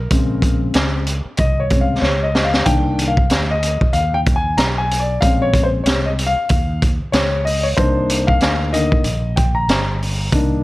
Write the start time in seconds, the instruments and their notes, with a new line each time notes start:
Already playing: grand piano A#4
0.10 fretless electric bass A#1, grand piano C#3 G#3 C4, kick, closed hi-hat
0.42 kick, closed hi-hat
0.74 fretless electric bass C#2, snare, closed hi-hat
1.07 closed hi-hat
1.37 fretless electric bass C2, grand piano D#5, kick, closed hi-hat
1.60 grand piano C#5
1.70 grand piano G#3 C4 C#4, kick, closed hi-hat
1.81 grand piano F5
2.02 fretless electric bass C#2, grand piano C#5, snare
2.23 grand piano D#5
2.35 snare
2.44 grand piano F5
2.54 snare
2.65 fretless electric bass C2, grand piano D#3 A#3 D4 G5, kick, closed hi-hat
2.99 closed hi-hat
3.08 grand piano F5
3.17 kick
3.30 fretless electric bass D2, snare, closed hi-hat
3.51 grand piano D#5
3.63 closed hi-hat
3.81 kick
3.93 fretless electric bass D#2, grand piano F5, closed hi-hat
4.14 grand piano G5
4.26 kick, closed hi-hat
4.36 grand piano G#5
4.58 fretless electric bass B1, grand piano A#5, snare, closed hi-hat
4.78 grand piano G#5
4.91 closed hi-hat
5.00 grand piano D5
5.21 fretless electric bass A#1, grand piano G#3 C4 C#4 F5, kick, closed hi-hat
5.42 grand piano C#5
5.54 kick, closed hi-hat
5.63 grand piano C5
5.84 fretless electric bass C2, grand piano C#5, snare, closed hi-hat
6.06 grand piano D#5
6.19 closed hi-hat
6.27 grand piano F5
6.36 muted fretless electric bass stroke
6.49 fretless electric bass D#2, kick, closed hi-hat
6.82 kick, closed hi-hat
7.00 muted fretless electric bass stroke
7.12 fretless electric bass C#2, grand piano C#5, snare, closed hi-hat
7.45 grand piano D#5, open hi-hat
7.63 grand piano C#5
7.77 fretless electric bass C2, grand piano A#3 D4 D#4 C5, kick, closed hi-hat
8.09 closed hi-hat
8.27 grand piano F5, kick
8.41 fretless electric bass D2, snare, closed hi-hat
8.73 grand piano D3 D#3 A#3 D#5, closed hi-hat
8.92 kick
9.04 fretless electric bass A#1, closed hi-hat
9.36 grand piano G5, kick, closed hi-hat
9.55 grand piano A#5
9.68 fretless electric bass G1, snare, closed hi-hat
10.02 open hi-hat
10.32 fretless electric bass C2, grand piano A#3 D4 D#4, kick, closed hi-hat